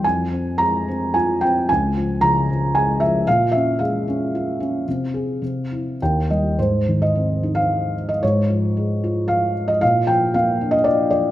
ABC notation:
X:1
M:3/4
L:1/16
Q:1/4=112
K:Fm
V:1 name="Felt piano"
a4 b4 a2 g2 | a4 b4 a2 =e2 | f2 =e2 f8- | f8 g2 e2 |
[K:Ab] c3 e4 f4 e | d8 f3 e | f2 g2 f3 e =d2 d2 |]
V:2 name="Felt piano" clef=bass
F,,2 C2 A,2 C2 F2 C2 | D,,2 F,2 D,2 F,2 A,2 F,2 | B,,2 D2 A,2 D2 F2 D2 | C,2 A2 C,2 =E2 _E,,2 G,2 |
[K:Ab] A,,2 E,2 C2 E6 | A,,2 F,2 A,2 F6 | B,,2 F,2 B,2 =D6 |]